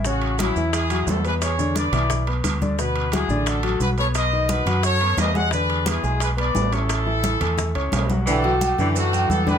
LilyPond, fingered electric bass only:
\new Staff \with { instrumentName = "Fingered electric bass" } { \clef bass \time 4/4 \key a \major \tempo 4 = 175 a,,4. e,4. e,4~ | e,4. b,,4. d,4~ | d,4. a,,4. b,,4~ | b,,4. fis,4. e,4~ |
e,4. b,,4. a,,4~ | a,,4. e,4 cis,8 b,,4~ | b,,4. fis,4. e,4 | }